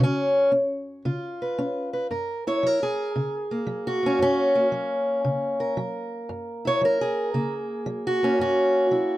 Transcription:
steel-string acoustic guitar
0.00 C#3 C#4
0.52 C#4
1.05 C#3 F4
1.42 B4
1.58 C#4
1.93 B4
2.11 F#2 A#4
2.47 E4 C#5
2.63 F#3 A#4
2.83 G#4
3.16 C#3
3.51 A#3
3.67 F#3
3.87 F#4
4.03 A#3 C#4
4.19 F#2 C#4
4.55 A#3
4.72 F#3
5.25 C#3
5.60 A#4
5.77 F#3
6.29 F#2
6.65 E4 C#5
6.81 F#3 A#4
7.01 G#4
7.34 C#3 A#3
7.86 F#3
8.07 F#4
8.23 A#3 C#4
8.39 F#2 F#4
8.91 F#3 E4

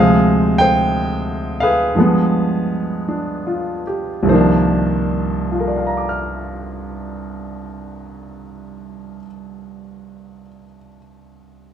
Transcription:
grand piano
Already playing: D2 C3 F3 G#4 C5 F5
0.00 G#3
0.58 C5 G5
1.60 G#4 B4 F5
1.95 G2 F3 G#3
2.00 B3
3.08 D4
3.47 F4
3.87 G4
4.23 C2 G2
4.27 D#3 F3 C5
4.32 A#3 D4
5.52 F4
5.60 A#4
5.68 D5
5.76 F5
5.87 A#5
5.97 D6
6.09 F6

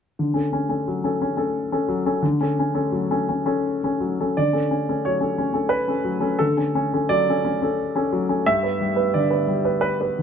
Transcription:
grand piano
0.19 D3
0.34 C#4 A4
0.53 C#4
0.69 C#4 A4
0.88 F#3
1.04 C#4 A4
1.22 C#4
1.37 C#4 A4
1.72 C#4 A4
1.89 F#3
2.06 C#4 A4
2.22 D3
2.41 C#4 A4
2.60 C#4
2.75 C#4 A4
2.92 F#3
3.11 C#4 A4
3.29 C#4
3.46 C#4 A4
3.84 C#4 A4
4.00 F#3
4.20 C#4 A4
4.37 D3 D5
4.53 C#4 A4
4.71 C#4
4.89 C#4 A4
5.05 F#3 C#5
5.21 C#4 A4
5.38 C#4
5.54 C#4 A4
5.69 B4
5.88 C#4 A4
6.04 F#3
6.20 C#4 A4
6.39 D3 A4
6.57 C#4 A4
6.75 C#4
6.94 C#4 A4
7.09 F#3 D5
7.29 C#4 A4
7.45 C#4
7.62 C#4 A4
7.96 C#4 A4
8.13 F#3
8.29 C#4 A4
8.46 G2 E5
8.63 B3 B4
8.80 G3
8.96 B3 B4
9.14 D3 D5
9.30 B3 B4
9.47 G3
9.65 B3 B4
9.81 B4
10.00 B3 B4
10.19 D3

